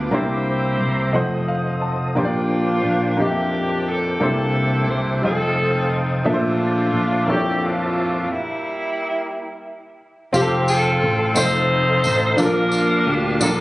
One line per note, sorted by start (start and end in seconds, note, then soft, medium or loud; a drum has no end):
0.00 0.13 G2 soft
0.00 0.11 A#3 soft
0.00 0.14 B3 medium
0.00 0.12 D4 medium
0.00 0.10 F4 soft
0.00 0.14 F4 medium
0.00 0.13 G4 medium
0.00 0.10 B4 medium
0.00 0.13 D5 medium
0.00 0.14 E5 medium
0.00 0.10 G5 soft
0.00 1.11 D6 medium
0.11 0.76 C2 medium
0.11 1.10 C3 soft
0.11 0.74 A#3 medium
0.11 0.74 D4 medium
0.11 0.75 E4 medium
0.11 1.45 E4 medium
0.11 0.75 G4 medium
0.11 1.46 G4 medium
0.11 1.13 C5 soft
0.11 1.45 C5 medium
0.11 0.75 C5 medium
0.11 1.13 E5 soft
0.11 1.13 A#5 soft
0.80 1.15 C2 medium
1.12 2.12 F1 medium
1.12 1.76 F3 medium
1.12 1.75 A3 medium
1.12 2.16 A4 medium
1.12 1.77 C5 medium
1.12 4.19 C5 soft
1.12 1.76 D#5 medium
1.12 2.16 D#5 soft
1.12 1.77 F#5 medium
1.12 2.16 D#6 medium
1.48 1.80 F5 medium
1.81 2.14 A5 medium
2.15 2.81 A#1 medium
2.15 3.15 A#2 medium
2.15 2.78 A#3 medium
2.15 4.19 A#3 medium
2.15 2.78 D4 medium
2.15 3.15 D4 medium
2.15 2.79 F4 medium
2.15 3.15 F4 medium
2.15 2.79 G4 medium
2.15 2.24 C5 medium
2.15 4.19 G5 soft
2.15 5.20 D6 medium
2.25 2.83 D5 medium
2.85 3.16 A#1 medium
3.17 4.17 F2 medium
3.17 3.80 A#3 medium
3.17 3.81 D4 medium
3.17 4.18 D4 medium
3.17 3.81 F4 soft
3.17 3.81 G4 medium
3.17 3.87 G4 medium
3.17 3.26 D#5 soft
3.27 3.85 E5 medium
3.88 4.21 A4 medium
4.20 4.85 C2 medium
4.20 5.19 C3 medium
4.20 4.83 A#3 medium
4.20 4.83 D4 medium
4.20 5.20 D4 medium
4.20 4.83 E4 medium
4.20 5.20 E4 medium
4.20 4.84 G4 medium
4.20 4.86 A4 medium
4.20 5.22 C5 medium
4.20 4.84 C5 medium
4.20 5.23 E5 soft
4.20 5.22 G5 soft
4.89 5.20 C2 medium
4.89 5.24 C5 medium
5.22 6.21 F1 medium
5.22 5.29 G3 soft
5.22 5.85 C4 medium
5.22 6.23 C4 medium
5.22 5.85 D#4 medium
5.22 6.22 D#4 medium
5.22 5.86 F4 medium
5.22 5.97 A4 medium
5.22 8.27 C5 medium
5.22 5.86 C5 medium
5.22 6.25 F5 soft
5.22 6.24 A5 soft
5.22 6.25 D#6 medium
5.28 5.88 A3 medium
6.24 6.90 A#1 medium
6.24 7.24 A#2 medium
6.24 6.87 A3 medium
6.24 7.25 A3 medium
6.24 6.88 D4 medium
6.24 7.25 D4 medium
6.24 7.25 F4 medium
6.24 6.88 A4 medium
6.24 6.33 A#4 medium
6.24 8.28 E5 soft
6.24 6.88 E5 medium
6.24 8.28 A5 soft
6.24 8.28 D6 medium
6.34 6.92 C5 medium
6.94 7.25 A#1 medium
7.27 8.26 F2 medium
7.27 7.89 A#3 medium
7.27 7.90 D4 medium
7.27 7.90 E4 medium
7.27 7.63 G4 medium
7.27 7.91 A4 medium
7.27 7.35 C#5 medium
7.36 7.94 D5 medium
7.63 8.27 A3 medium
7.63 8.27 D4 medium
7.63 8.31 F4 medium
8.30 9.63 G3 medium
8.30 9.63 A#3 medium
8.30 9.67 E4 medium
10.33 10.98 F1 loud
10.33 10.96 C4 medium
10.33 10.68 C4 medium
10.33 10.97 F4 medium
10.33 10.67 G4 medium
10.33 10.42 G4 medium
10.33 12.37 A4 medium
10.33 11.36 C5 medium
10.33 13.61 F5 medium
10.33 12.37 C6 medium
10.33 tambourine soft
10.42 11.01 A4 medium
10.68 11.33 C4 medium
10.68 11.33 F4 medium
10.68 11.33 A4 medium
10.68 tambourine medium
11.02 11.34 A1 medium
11.34 12.01 F1 medium
11.34 11.98 A3 medium
11.34 11.98 C4 medium
11.34 11.98 D#4 medium
11.34 12.36 D#4 medium
11.34 11.99 F4 medium
11.34 12.36 A4 medium
11.34 11.99 C5 medium
11.34 12.40 C5 loud
11.34 12.38 D#5 medium
11.34 tambourine medium
12.04 12.37 A1 medium
12.04 tambourine medium
12.37 13.03 A#1 medium
12.37 13.37 A#2 medium
12.37 13.61 A#3 medium
12.37 13.00 D4 medium
12.37 13.38 D4 medium
12.37 13.01 F4 medium
12.37 13.38 F4 medium
12.37 12.46 A4 medium
12.37 13.08 A#4 loud
12.37 13.61 D5 medium
12.37 13.61 D6 medium
12.37 tambourine soft
12.46 13.05 A#4 medium
12.72 tambourine medium
13.07 13.38 D2 medium
13.07 13.42 G4 medium
13.40 13.61 A#1 medium
13.40 13.61 A#3 medium
13.40 13.61 D4 medium
13.40 13.61 F4 medium
13.40 13.61 A4 loud
13.40 tambourine medium